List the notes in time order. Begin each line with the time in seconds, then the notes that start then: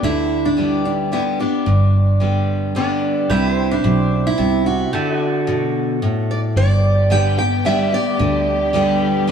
Already playing: G4 B4 D5
0.03 D2 D3 E4
0.45 D4
0.57 D3 G3 B3 G4
0.85 D4
1.12 D3 G3 B3 E4 G4
1.40 B3 D4 G4
1.66 G1 G2
2.20 D3 G3 B3 G4
2.75 D3 G3 B3 D4 G4
3.30 C2 C3 E4 G4 B4 E5
3.51 C5
3.71 D4
3.84 B1 B2
4.27 E4
4.38 C2 C3
4.66 F#4
4.93 D3 G4 A4 E5
5.13 F#4
5.20 D5
5.47 B2
6.02 A2
6.31 D5
6.56 G1 G2 D3 G3 B3 G4 D5
7.10 D3 G3 B3 G4 G5
7.37 B3 G4 G5
7.65 D3 G3 B3 G4 E5
7.92 B3 G4 D5
8.19 D2 D3
8.73 D3 G3 B3 G4
9.27 D3